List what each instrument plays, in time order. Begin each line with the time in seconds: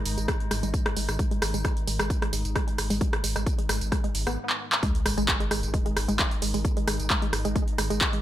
Already playing: synth drone G#2 D#3
0.06 sub bass G#1, open hi-hat, tambourine
0.17 sub bass G#1, synth arpeggio sound G#3, closed hi-hat, tambourine
0.28 synth arpeggio sound G#3, kick, cross-stick, closed hi-hat, tambourine
0.40 closed hi-hat
0.51 sub bass G#1, synth arpeggio sound G#3, cross-stick, open hi-hat, tambourine
0.63 sub bass G#1, synth arpeggio sound G#3, closed hi-hat, tambourine
0.74 kick, closed hi-hat, tambourine
0.86 synth arpeggio sound G#3, cross-stick, closed hi-hat
0.96 sub bass G#1, synth arpeggio sound G#3, open hi-hat, tambourine
1.08 sub bass G#1, cross-stick, closed hi-hat, tambourine
1.19 synth arpeggio sound G#3, kick, closed hi-hat, tambourine
1.31 synth arpeggio sound G#3, closed hi-hat
1.42 sub bass G#1, cross-stick, open hi-hat, tambourine
1.54 sub bass G#1, synth arpeggio sound G#3, closed hi-hat, tambourine
1.65 synth arpeggio sound G#3, kick, cross-stick, closed hi-hat, tambourine
1.77 closed hi-hat
1.87 sub bass G#1, synth arpeggio sound G#3, open hi-hat, tambourine
1.99 sub bass G#1, synth arpeggio sound G#3, cross-stick, closed hi-hat, tambourine
2.10 kick, closed hi-hat, tambourine
2.22 synth arpeggio sound G#3, cross-stick, closed hi-hat
2.33 sub bass G#1, synth arpeggio sound G#3, open hi-hat, tambourine
2.45 sub bass G#1, closed hi-hat, tambourine
2.55 synth arpeggio sound G#3, kick, cross-stick, closed hi-hat, tambourine
2.67 synth arpeggio sound G#3, closed hi-hat
2.78 sub bass G#1, cross-stick, open hi-hat, tambourine
2.90 sub bass G#1, synth arpeggio sound G#3, open hi-hat, tambourine
3.01 synth arpeggio sound G#3, kick, closed hi-hat, tambourine
3.13 cross-stick, closed hi-hat
3.24 sub bass G#1, synth arpeggio sound G#3, open hi-hat, tambourine
3.36 sub bass G#1, synth arpeggio sound G#3, cross-stick, closed hi-hat, tambourine
3.46 kick, closed hi-hat, tambourine
3.58 synth arpeggio sound G#3, closed hi-hat
3.69 sub bass G#1, synth arpeggio sound G#3, cross-stick, open hi-hat, tambourine
3.81 sub bass G#1, closed hi-hat, tambourine
3.92 synth arpeggio sound G#3, kick, cross-stick, closed hi-hat, tambourine
4.04 synth arpeggio sound G#3, closed hi-hat
4.15 sub bass G#1, open hi-hat, tambourine
4.27 sub bass G#1, synth arpeggio sound B3, cross-stick, tambourine
4.50 clap
4.72 clap
4.83 synth drone G#2 D#3, synth arpeggio sound G#3, kick, closed hi-hat, tambourine, sub drop
4.95 closed hi-hat
5.06 sub bass G#1, synth arpeggio sound G#3, cross-stick, open hi-hat, tambourine
5.18 sub bass G#1, synth arpeggio sound G#3, closed hi-hat, tambourine
5.28 kick, clap, closed hi-hat, tambourine
5.40 synth arpeggio sound G#3, closed hi-hat
5.51 sub bass G#1, synth arpeggio sound G#3, cross-stick, open hi-hat, tambourine
5.63 sub bass G#1, closed hi-hat, tambourine
5.74 synth arpeggio sound G#3, kick, closed hi-hat, tambourine
5.86 synth arpeggio sound G#3, closed hi-hat
5.96 sub bass G#1, cross-stick, open hi-hat, tambourine
6.08 sub bass G#1, synth arpeggio sound G#3, closed hi-hat, tambourine
6.19 synth arpeggio sound G#3, kick, clap, closed hi-hat, tambourine
6.31 closed hi-hat
6.42 sub bass G#1, synth arpeggio sound G#3, open hi-hat, tambourine
6.54 sub bass G#1, synth arpeggio sound G#3, open hi-hat, tambourine
6.65 kick, closed hi-hat, tambourine
6.77 synth arpeggio sound G#3, closed hi-hat
6.87 sub bass G#1, synth arpeggio sound G#3, cross-stick, open hi-hat, tambourine
6.99 sub bass G#1, closed hi-hat, tambourine
7.10 synth arpeggio sound G#3, kick, clap, closed hi-hat
7.22 synth arpeggio sound G#3, closed hi-hat
7.33 sub bass G#1, cross-stick, open hi-hat, tambourine
7.45 sub bass G#1, synth arpeggio sound G#3, closed hi-hat, tambourine
7.56 synth arpeggio sound G#3, kick, closed hi-hat, tambourine
7.68 closed hi-hat
7.78 sub bass G#1, synth arpeggio sound G#3, cross-stick, open hi-hat, tambourine
7.90 sub bass G#1, synth arpeggio sound G#3, closed hi-hat, tambourine
8.01 kick, clap, closed hi-hat
8.13 synth arpeggio sound G#3, closed hi-hat